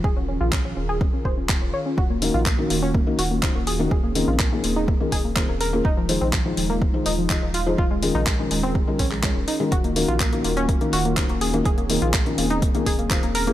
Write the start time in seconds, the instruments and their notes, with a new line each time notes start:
Already playing: analog synth pad F4
0.04 analog synth bass D#1, analog synth pad D#3 C#4 G#4 A#4, synth pluck G#4, kick
0.17 synth pluck C#4
0.28 synth pluck C#4
0.41 analog synth bass A#1, synth pluck F4
0.52 synth pluck C#4, kick, clap
0.65 synth pluck C#4
0.77 analog synth bass D#1, synth pluck C#4
0.89 synth pluck G#4
1.01 synth pluck C#4, kick
1.13 synth pluck C#4
1.25 analog synth bass D#1, synth pluck C5, kick
1.37 synth pluck C#4
1.49 synth pluck C#4, kick, clap
1.62 analog synth bass D#1, synth pluck C#4
1.74 synth pluck C#5
1.86 synth pluck C#4
1.98 analog synth bass D#1, analog synth pad A#3 F#4, synth pluck F#4, kick
2.10 synth pluck A#3
2.22 felt piano D#3 C#4 D#4 F#4 A#4, synth pluck A#3, open hi-hat
2.34 analog synth bass A#1, synth pluck F4
2.46 synth pluck A#3, kick, clap
2.58 felt piano D#3 C#4 D#4 F#4 A#4, synth pluck A#3
2.70 analog synth bass D#1, synth pluck A#3, open hi-hat
2.83 synth pluck C#4
2.95 synth pluck A#3, kick
3.07 felt piano D#3 C#4 D#4 F#4 A#4, synth pluck A#3
3.19 analog synth bass D#1, synth pluck F#4, open hi-hat
3.31 synth pluck A#3
3.43 felt piano D#3 C#4 D#4 F#4 C5, synth pluck A#3, kick, clap
3.55 analog synth bass D#1, synth pluck A#3
3.67 synth pluck G#4, open hi-hat
3.79 felt piano D#3 C#4 D#4 F#4 A#4, synth pluck A#3
3.91 analog synth bass D#1, analog synth pad C4 G#4, synth pluck G#4, kick
4.04 synth pluck A#3
4.15 felt piano D#3 C#4 F4 G#4 A#4, synth pluck A#3, open hi-hat
4.28 analog synth bass A#1, synth pluck F4
4.39 synth pluck A#3, kick, clap
4.52 felt piano D#3 C#4 F4 G#4 A#4, synth pluck A#3
4.64 analog synth bass D#1, synth pluck A#3, open hi-hat
4.76 synth pluck D#4
4.88 synth pluck A#3, kick
5.00 felt piano D#3 C#4 F4 G#4 A#4, synth pluck A#3
5.12 analog synth bass D#1, synth pluck G#4, kick, open hi-hat
5.25 synth pluck A#3
5.36 felt piano D#3 C#4 F4 G#4 C5, synth pluck A#3, kick, clap
5.49 analog synth bass D#1, synth pluck A#3
5.61 synth pluck A#4, open hi-hat
5.73 synth pluck A#3, felt piano C#4 F4 G#4 A#4
5.85 analog synth bass D#1, analog synth pad G#3 D#4 F4, synth pluck D#4, kick
5.97 synth pluck F3
6.09 felt piano D#3 D#4 F4 G#4 C5, synth pluck F3, open hi-hat
6.21 analog synth bass A#1, synth pluck C4
6.33 synth pluck F3, kick, clap
6.46 felt piano D#3 D#4 F4 G#4 C5, synth pluck F3
6.57 analog synth bass D#1, synth pluck F3, open hi-hat
6.70 synth pluck A#3
6.82 synth pluck F3, kick
6.94 felt piano D#3 D#4 F4 G#4 C5, synth pluck F3
7.06 analog synth bass D#1, synth pluck D#4, open hi-hat
7.18 synth pluck F3
7.30 felt piano D#3 D#4 F4 G#4 D#5, synth pluck F3, kick, clap
7.42 analog synth bass D#1, synth pluck F3
7.54 synth pluck F4, open hi-hat
7.66 synth pluck F3, felt piano D#4 F4 G#4 C5
7.78 analog synth bass D#1, analog synth pad D#3 C#4 G#4 A#4, synth pluck F4, kick
7.91 synth pluck G#3
8.03 felt piano D#3 C#4 F4 G#4 A#4, synth pluck G#3, open hi-hat
8.15 analog synth bass A#1, synth pluck D#4
8.26 synth pluck G#3, kick, clap
8.39 felt piano D#3 C#4 F4 G#4 A#4, synth pluck G#3
8.51 analog synth bass D#1, synth pluck G#3, open hi-hat
8.63 synth pluck C4
8.75 synth pluck G#3, kick
8.87 felt piano D#3 C#4 F4 G#4 A#4, synth pluck G#3
8.99 analog synth bass A#1, synth pluck C#4, kick, open hi-hat
9.11 synth pluck G#3, clap
9.23 felt piano D#3 C#4 F4 G#4 C#5, synth pluck G#3, kick, clap
9.36 analog synth bass D#1, synth pluck G#3
9.48 synth pluck D#4, open hi-hat
9.60 felt piano D#3 C#4 F4 G#4 A#4, synth pluck G#3
9.72 analog synth bass D#1, analog synth pad A#3 F4 F#4, synth pluck F#4, kick, closed hi-hat
9.84 synth pluck A#3, closed hi-hat
9.96 felt piano D#3 C#4 D#4 F#4 A#4, synth pluck A#3, open hi-hat
10.08 analog synth bass A#1, synth pluck F4, closed hi-hat
10.20 synth pluck A#3, kick, clap, closed hi-hat
10.33 felt piano D#3 C#4 D#4 F#4 A#4, synth pluck A#3, closed hi-hat
10.44 analog synth bass D#1, synth pluck A#3, open hi-hat
10.57 synth pluck C#4, closed hi-hat
10.69 synth pluck A#3, kick, closed hi-hat
10.81 felt piano D#3 C#4 D#4 F#4 A#4, synth pluck A#3, closed hi-hat
10.93 analog synth bass D#1, synth pluck F#4, open hi-hat
11.05 synth pluck A#3
11.17 felt piano D#3 C#4 D#4 F#4 C5, synth pluck A#3, kick, clap, closed hi-hat
11.29 analog synth bass D#1, synth pluck A#3, closed hi-hat
11.41 synth pluck G#4, open hi-hat
11.54 felt piano D#3 C#4 D#4 F#4 A#4, synth pluck A#3, closed hi-hat
11.65 analog synth bass D#1, analog synth pad C4 G#4, synth pluck G#4, kick, closed hi-hat
11.78 synth pluck A#3, closed hi-hat
11.90 felt piano D#3 C#4 F4 G#4 A#4, synth pluck A#3, open hi-hat
12.02 analog synth bass A#1, synth pluck F4, closed hi-hat
12.14 synth pluck A#3, kick, clap, closed hi-hat
12.26 felt piano D#3 C#4 F4 G#4 A#4, synth pluck A#3, closed hi-hat
12.38 analog synth bass D#1, synth pluck A#3, open hi-hat
12.50 synth pluck D#4, closed hi-hat
12.62 synth pluck A#3, kick, closed hi-hat
12.75 felt piano D#3 C#4 F4 G#4 A#4, synth pluck A#3, closed hi-hat
12.86 analog synth bass D#1, synth pluck G#4, kick, open hi-hat
12.99 synth pluck A#3, closed hi-hat
13.10 felt piano D#3 C#4 F4 G#4 C5, synth pluck A#3, kick, clap, closed hi-hat
13.23 analog synth bass D#1, synth pluck A#3, closed hi-hat
13.35 synth pluck A#4, open hi-hat
13.47 synth pluck A#3, felt piano C#4 F4 G#4 A#4, closed hi-hat